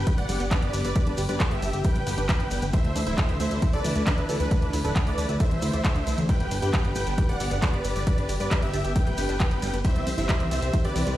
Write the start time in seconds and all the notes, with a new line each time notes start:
Already playing: D3 G3 B3 G4 B4 G5
0.07 G4, kick, closed hi-hat, ride, maracas
0.18 D1 B4 D5 F#5, closed hi-hat
0.29 G1 D3 G3 B3 G4, open hi-hat, ride, maracas
0.40 G1 B3, closed hi-hat, maracas
0.51 D3 G3 B3 D4 G4 B4 D5, kick, clap, closed hi-hat, ride, maracas
0.62 G1 G4, closed hi-hat
0.73 G1 D3 G3 B3 G4 B4, open hi-hat, ride, maracas
0.84 G1 G3 B4 D5, closed hi-hat, maracas
0.95 D3 G3 B3 G4, kick, closed hi-hat, ride, maracas
1.07 G1 D4, closed hi-hat
1.17 G1 G4, open hi-hat, ride, maracas
1.29 G2 D3 G3 B3 G4 B4 D5, closed hi-hat, maracas
1.40 G3, kick, clap, closed hi-hat, ride, maracas
1.51 G1 D3 G3 B3 G4 E5, closed hi-hat
1.62 G1 D4, open hi-hat, ride, maracas
1.73 G1 D3 G3 B3 G4, closed hi-hat, maracas
1.84 B4 G5, kick, closed hi-hat, ride, maracas
1.96 D1 G3, closed hi-hat
2.06 G1 D3 G3 B3 G4, open hi-hat, ride, maracas
2.18 G1 D4, closed hi-hat, maracas
2.29 D3 G3 B3 G4, kick, clap, closed hi-hat, ride, maracas
2.40 G1 B4, closed hi-hat
2.51 G1 D3 G3 B3 G4, open hi-hat, ride, maracas
2.62 G1 B3, closed hi-hat, maracas
2.73 D3 E3 A3 E4 C5 E5, kick, closed hi-hat, ride, maracas
2.85 D2 A3, closed hi-hat
2.96 D2 D4, open hi-hat, ride, maracas
3.07 D1 D3 E3 A3 E4 C5 E5, closed hi-hat, maracas
3.17 A4, kick, clap, closed hi-hat, ride, maracas
3.29 D2 D3 E3 A3 E4, closed hi-hat
3.40 D2 A3 C5 E5, open hi-hat, ride, maracas
3.51 D2 D3 E3 A3 D4 E4, closed hi-hat, maracas
3.62 E4, kick, closed hi-hat, ride, maracas
3.73 C2 A4 B4 D5, closed hi-hat
3.84 D2 D3 E3 A3 E4, open hi-hat, ride, maracas
3.96 D2 A3, closed hi-hat, maracas
4.06 D3 E3 A3 D4 E4 B4, kick, clap, closed hi-hat, ride, maracas
4.18 D2 E4, closed hi-hat
4.29 D2 D3 E3 A3 E4 A4, open hi-hat, ride, maracas
4.40 D2 E3 D4 B4, closed hi-hat, maracas
4.51 D3 E3 A3 E4, kick, closed hi-hat, ride, maracas
4.62 D2 D4, closed hi-hat
4.73 D2 E4, open hi-hat, ride, maracas
4.84 D1 D3 E3 A3 D4 E4 A4 B4, closed hi-hat, maracas
4.96 E3, kick, clap, closed hi-hat, ride, maracas
5.07 D2 D3 E3 A3 E4 B4 D5, closed hi-hat
5.18 D2 D4, open hi-hat, ride, maracas
5.29 D2 D3 E3 A3 E4, closed hi-hat, maracas
5.40 A4 C5 E5, kick, closed hi-hat, ride, maracas
5.51 C2 E3, closed hi-hat
5.62 D2 D3 E3 A3 E4, open hi-hat, ride, maracas
5.73 D2 D5, closed hi-hat, maracas
5.85 D3 E3 A3 E4, kick, clap, closed hi-hat, ride, maracas
5.96 D2 D4, closed hi-hat
6.07 C2 D3 E3 A3 E4, open hi-hat, ride, maracas
6.18 D2 E3, closed hi-hat, maracas
6.29 D3 G3 B3 G4 B4 G5, kick, closed hi-hat, ride, maracas
6.40 G1 B3, closed hi-hat
6.51 G1 D4, open hi-hat, ride, maracas
6.62 G2 D3 G3 B3 G4 B4 G5, closed hi-hat, maracas
6.73 B4, kick, clap, closed hi-hat, ride, maracas
6.85 G1 D3 G3 B3 G4, closed hi-hat
6.95 G1 B3 B4 G5, open hi-hat, ride, maracas
7.07 G1 D3 G3 B3 D4 G4, closed hi-hat, maracas
7.18 G4, kick, closed hi-hat, ride, maracas
7.29 D1 B4 D5 F#5, closed hi-hat
7.40 G1 D3 G3 B3 G4, open hi-hat, ride, maracas
7.51 G1 B3, closed hi-hat, maracas
7.62 D3 G3 B3 D4 G4 B4 D5, kick, clap, closed hi-hat, ride, maracas
7.73 G1 G4, closed hi-hat
7.84 G1 D3 G3 B3 G4 B4, open hi-hat, ride, maracas
7.96 G1 G3 B4 D5, closed hi-hat, maracas
8.07 D3 G3 B3 G4, kick, closed hi-hat, ride, maracas
8.18 G1 D4, closed hi-hat
8.29 G1 G4, open hi-hat, ride, maracas
8.40 G2 D3 G3 B3 G4 B4 D5, closed hi-hat, maracas
8.51 G3, kick, clap, closed hi-hat, ride, maracas
8.62 G1 D3 G3 B3 G4 E5, closed hi-hat
8.73 G1 D4, open hi-hat, ride, maracas
8.84 G1 D3 G3 B3 G4, closed hi-hat, maracas
8.96 B4 G5, kick, closed hi-hat, ride, maracas
9.07 D1 G3, closed hi-hat
9.17 G1 D3 G3 B3 G4, open hi-hat, ride, maracas
9.29 G1 D4, closed hi-hat, maracas
9.39 D3 G3 B3 G4, kick, clap, closed hi-hat, ride, maracas
9.51 G1 B4, closed hi-hat
9.62 G1 D3 G3 B3 G4, open hi-hat, ride, maracas
9.73 G1 B3, closed hi-hat, maracas
9.84 E3 G3 C4 G4 C5 E5, kick, closed hi-hat, ride, maracas
9.96 C2 G3, closed hi-hat
10.07 C2 C4, open hi-hat, ride, maracas
10.18 G1 E3 G3 C4 E4 G4 C5 E5, closed hi-hat, maracas
10.29 G4, kick, clap, closed hi-hat, ride
10.40 C2 E3 G3 C4 G4, closed hi-hat
10.51 C2 G3 C5 E5, open hi-hat, ride, maracas
10.62 C2 E3 G3 C4 G4, closed hi-hat, maracas
10.73 E4, kick, closed hi-hat, ride, maracas
10.85 G1 G4 B4 D5, closed hi-hat
10.96 C2 E3 G3 C4 G4, open hi-hat, ride, maracas
11.07 C2 G3, closed hi-hat, maracas